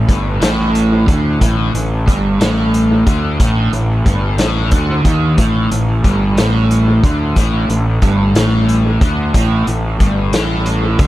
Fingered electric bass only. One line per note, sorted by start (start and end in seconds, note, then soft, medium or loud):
0.09 0.39 G1 loud
0.42 1.04 A1 loud
1.08 1.39 D2 loud
1.41 1.72 A1 loud
1.74 2.05 A1 medium
2.08 2.38 G1 loud
2.41 3.03 A1 medium
3.06 3.37 D2 loud
3.39 3.70 A1 medium
3.72 4.03 A1 medium
4.06 4.37 G1 loud
4.38 4.69 A1 loud
4.72 5.03 D2 medium
5.04 5.35 D#2 loud
5.38 5.69 A1 medium
5.71 6.02 A1 medium
6.04 6.35 G1 loud
6.37 6.99 A1 medium
7.03 7.34 D2 loud
7.36 7.67 A1 loud
7.69 8.00 A1 medium
8.02 8.33 G1 loud
8.35 8.97 A1 loud
9.01 9.32 D2 loud
9.34 9.65 A1 loud
9.67 9.98 A1 medium
10.00 10.31 G1 loud
10.33 10.95 A1 loud
10.99 11.07 D2 medium